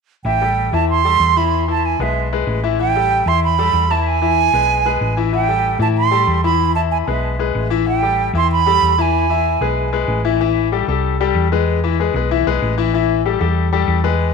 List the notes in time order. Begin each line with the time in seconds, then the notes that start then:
0.25 A1 E3 E4 E5 G5
0.41 G3 G4 A4
0.73 E2 E3 E4 E5 A5
0.90 C6
1.05 G3 G4 A4
1.20 E2
1.36 E3 E4 E5 B5
1.68 E3 E4 E5 A5
1.85 G#5
1.99 B1 G#3 G#4 B4 E5
2.33 G#3 G#4 B4
2.47 A1
2.63 E3 E4 E5
2.80 E3 E4 E5 G5
2.95 G3 G4 A4
3.26 E2 E3 E4 E5 C6
3.44 B5
3.59 G3 G4 A4
3.73 E2
3.90 E3 E4 E5 A5
4.07 G#5
4.22 E3 E4 E5
4.53 B1 G#3 G#4 B4
4.85 G#3 G#4 B4
5.01 A1
5.17 E3 E4 E5
5.33 E3 E4 E5 G5
5.48 G3 G4 A4
5.79 A2 E3 E4 E5 A5
5.98 C6
6.11 G3 G4 A4
6.27 E2
6.44 E3 E4 E5 B5
6.75 E3 E4 E5 A5
6.91 G#5
7.07 B1 G#3 G#4 B4 E5
7.39 G#3 G#4 B4
7.55 A1
7.70 E3 E4 E5
7.86 E3 E4 E5 G5
8.02 G3 G4 A4
8.33 E2 E3 E4 E5 C6
8.52 B5
8.66 G3 G4 A4
8.82 E2
8.98 E3 E4 E5 G#5
9.30 E3 E4 E5
9.61 B1 G#3 G#4 B4
9.93 G#3 G#4 B4
10.08 A1
10.25 E3 E4 E5
10.41 E3 E4 E5
10.72 G3 G4 A4
10.88 C2 G3 G4 A4
11.20 G3 G4 A4
11.35 E2
11.52 G#3 G#4 B4
11.84 E3 E4 E5
12.00 G#3 G#4 B4
12.14 B1 G#3 G#4 B4
12.31 E3 E4 E5
12.46 B1 G#3 G#4 B4
12.62 A1
12.78 E3 E4 E5
12.94 E3 E4 E5
13.25 G3 G4 A4
13.40 E2 G3 G4 A4
13.73 G3 G4 A4
13.88 E2
14.04 G#3 G#4 B4